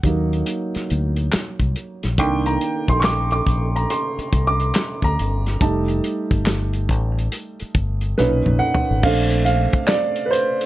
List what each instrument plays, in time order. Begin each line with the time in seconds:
Already playing: upright piano F#5
0.03 fingered electric bass D#2, upright piano F#3 A#3 D#4, kick, closed hi-hat
0.33 closed hi-hat
0.46 closed hi-hat
0.75 muted fingered electric bass stroke, snare, closed hi-hat
0.90 fingered electric bass D2, closed hi-hat
1.16 closed hi-hat
1.32 muted fingered electric bass stroke, snare, clap, closed hi-hat
1.60 fingered electric bass C2, kick, closed hi-hat
1.76 closed hi-hat
2.03 fingered electric bass A#1, snare, closed hi-hat
2.18 fingered electric bass C2, upright piano D#3 A#3 D4 G5, kick, closed hi-hat
2.46 upright piano A#5, closed hi-hat
2.61 closed hi-hat
2.88 fingered electric bass A#1, upright piano C6, kick, closed hi-hat
3.00 upright piano C#6, clap
3.04 upright piano D6, snare, closed hi-hat
3.31 upright piano D6, closed hi-hat
3.47 fingered electric bass A#1, kick, closed hi-hat
3.76 upright piano A#5, closed hi-hat
3.90 upright piano C6, closed hi-hat
4.19 muted fingered electric bass stroke, closed hi-hat
4.33 fingered electric bass C2, kick, closed hi-hat
4.47 upright piano D6
4.60 closed hi-hat
4.74 snare, clap, closed hi-hat
5.02 fingered electric bass D2, upright piano A#5, kick, closed hi-hat
5.19 fingered electric bass G1, closed hi-hat
5.46 snare, closed hi-hat
5.61 fingered electric bass F1, upright piano G3 A3 D#4 A5, kick, closed hi-hat
5.88 closed hi-hat
6.04 closed hi-hat
6.31 fingered electric bass G1, kick, closed hi-hat
6.46 snare, clap, closed hi-hat
6.73 closed hi-hat
6.89 fingered electric bass A1, kick, closed hi-hat
7.19 closed hi-hat
7.32 closed hi-hat
7.60 muted fingered electric bass stroke, closed hi-hat
7.75 fingered electric bass G1, kick, closed hi-hat
8.01 closed hi-hat
8.18 fingered electric bass B1, upright piano A#2 C#4 D#4 B4, snare
8.46 fingered electric bass A#1, mid tom
8.59 upright piano F#5
8.75 floor tom
8.91 fingered electric bass G#1
9.03 fingered electric bass A#1, upright piano A3 C4 D4 F5, kick, crash
9.30 closed hi-hat
9.45 upright piano F5, closed hi-hat
9.73 muted fingered electric bass stroke, kick, closed hi-hat
9.87 upright piano D5, snare, clap, closed hi-hat
10.16 closed hi-hat
10.26 upright piano B4
10.31 upright piano C5, closed hi-hat
10.61 closed hi-hat